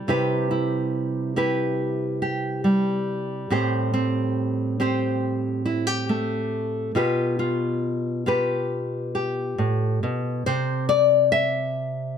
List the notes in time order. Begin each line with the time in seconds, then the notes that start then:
Already playing: G3
0.08 C3 E4 G4 B4
0.51 E4
1.36 E4 G4 B4
2.22 G4
2.64 G3
3.50 A2 C4 G4 C5
3.94 C4
4.80 C4 G4 C5
5.66 E4
5.87 G4
6.09 A3
6.95 B2 F4 G4 B4
7.39 F4
8.26 F4 G4 B4
9.15 G4
9.58 A2
10.03 B2
10.46 C3 C5
10.89 D5
11.32 E5